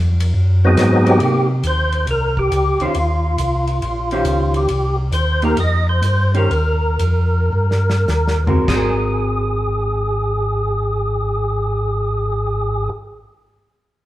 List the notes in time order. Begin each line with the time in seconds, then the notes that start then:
Already playing: F2
0.20 ride
0.34 F#2
0.64 F#3 B3 C4 D#4 G#4
0.77 G#2, snare, hi-hat pedal, ride
1.06 G4, ride
1.20 C3 A#3 D#4 G4, ride
1.63 D#2, hi-hat pedal, ride
1.67 C5
1.92 ride
2.07 C2, ride
2.11 A#4
2.37 G4, kick
2.52 C#2, hi-hat pedal, ride
2.80 C#2 D#3 C#4 F4 G4 C5, ride
2.94 D#2, ride
3.38 C2, hi-hat pedal, ride
3.67 ride
3.82 A#1, ride
4.11 D#3 C#4 G4 C5, ride
4.25 C#2, hi-hat pedal, ride
4.54 G4, ride
4.68 C2, ride
5.12 D#2 C5, hi-hat pedal, ride
5.42 A#3 D#4 G4 A#4, ride
5.57 F2 D#5, ride
5.89 C5
6.02 G2, hi-hat pedal, ride
6.34 D#3 C#4 G4 A#4 C5, ride
6.50 D#2, ride
6.99 F2, hi-hat pedal, ride
7.52 G2
7.71 snare
7.90 snare
8.08 D#2, snare, hi-hat pedal
8.28 snare
8.47 G#3 C4 F#4 A#4, floor tom
8.64 G#1 G#3 G#4, kick, snare, china
8.69 C4
8.73 F#4 A#4